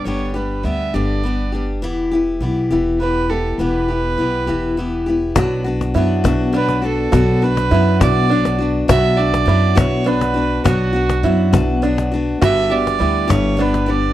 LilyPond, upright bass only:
\new Staff \with { instrumentName = "Upright bass" } { \clef bass \time 6/8 \key b \minor \tempo 4. = 68 g,,4 d,8 g,,4. | e,,4 b,,8 e,,4. | e,,4 b,,8 e,,4. | b,,4 fis,8 b,,4. |
b,,4 fis,8 b,,4. | b,,4 fis,8 b,,4. | b,,4 fis,8 b,,4. | g,,4 d,8 g,,4. | }